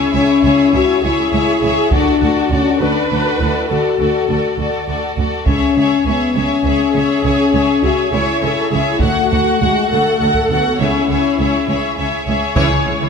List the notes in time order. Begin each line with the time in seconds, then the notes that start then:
Already playing: C#4 E4 G#4 C#5 E5
0.13 C#2 G#4 C#5 E5
0.17 C#4
0.43 C#2 G#4 C#5 E5
0.73 C#2 F#4 G#4 C#5 E5
1.02 C#2 E4 G#4 C#5 E5
1.32 C#2 G#4 C#5 E5
1.62 C#2 G#4 C#5 E5
1.91 D2 D4 F#4 A4 D5, taiko
2.21 D2 F#4 A4 D5
2.50 D2 C#4 F#4 A4 D5
2.80 D2 D4 F#4 A4 B4 D5
3.10 D2 F#4 A4 D5
3.40 D2 E4 F#4 A4 D5
3.69 D2 F#4 A4 D5
3.99 D2 F#4 A4 D5
4.28 D2 F#4 A4 D5
4.57 D2 F#4 A4 D5
4.87 D2 F#4 A4 D5
5.17 D2 F#4 A4 D5
5.46 C#2 C#4 G#4 C#5 E5, taiko
5.76 C#2 G#4 C#5 E5
6.05 C#2 B3 G#4 C#5 E5
6.34 C#2 C#4 G#4 C#5 E5
6.64 C#2 G#4 C#5 E5
6.94 C#2 G#4 C#5 E5
7.23 C#2 C#4 G#4 C#5 E5
7.53 C#2 G#4 C#5 E5
7.83 C#2 F#4 G#4 C#5 E5
8.12 C#2 E4 G#4 C#5 E5
8.42 C#2 G#4 A4 C#5 E5
8.71 C#2 G#4 C#5 E5
9.00 D2 A3 F#4 F#5, taiko
9.29 D2 F#4 F#5
9.58 D2 G#3 F#4 F#5
9.87 D2 A3 A4 F#5
9.91 D2 F#4 F#5
10.20 D2 F#4 F#5
10.34 taiko
10.49 D2 B3 F#4 F#5
10.79 C#2 C#4 E4 G#4 C#5 E5
11.09 C#2 G#4 C#5 E5
11.38 C#2 G#4 C#5 E5
11.68 C#2 G#4 C#5 E5
11.97 C#2 G#4 C#5 E5
12.27 C#2 G#4 C#5 E5
12.55 C#2 C#3 E3 G#3 E4 G#4 C#5, taiko
12.72 C#3 E3 G#3
12.86 C#2 C#3 E3 C#4
13.01 C#3 E3 E4